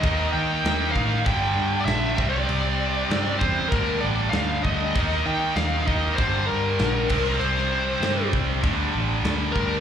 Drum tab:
CC |x---x---x---x---|x---x---x---x---|x---x---x---x-x-|x---x---x---x---|
SD |----o-------o---|----o-------o---|-o--o-------o---|-o--o-------o---|
BD |o-----o-o-----o-|------o-o-----o-|o-----o-o-----o-|------o-o-----o-|